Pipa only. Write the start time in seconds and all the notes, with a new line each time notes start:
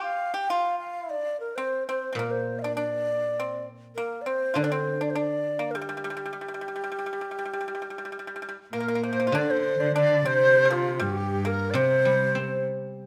Already playing: G4
0.34 G4
0.50 F4
1.19 D4
1.58 C4
1.89 C4
2.13 C4
2.19 A#3
2.64 D4
2.77 D4
3.40 C4
3.98 A#3
4.26 C4
4.54 D4 F4
4.64 D4
4.72 C4
5.01 D4
5.15 D4
5.59 A#3
5.75 G3
5.81 G3
5.89 G3
5.97 G3
6.04 G3
6.10 G3
6.17 G3
6.26 G3
6.33 G3
6.41 G3
6.48 G3
6.54 G3
6.61 G3
6.68 G3
6.76 G3
6.84 G3
6.92 G3
6.99 G3
7.06 G3
7.13 G3
7.21 G3
7.31 G3
7.39 G3
7.45 G3
7.53 G3
7.61 G3
7.68 G3
7.75 G3
7.82 G3
7.90 G3
7.98 G3
8.05 G3
8.12 G3
8.19 G3
8.27 G3
8.36 G3
8.42 G3
8.49 G3
8.73 A#3
8.80 A#3
8.88 A#3
8.95 A#3
9.03 A#3
9.13 A#3
9.20 A#3
9.27 F4
9.35 D4
9.96 D4
10.25 C4
10.65 G3
10.70 F3
10.99 G3
11.45 A#3
11.75 C4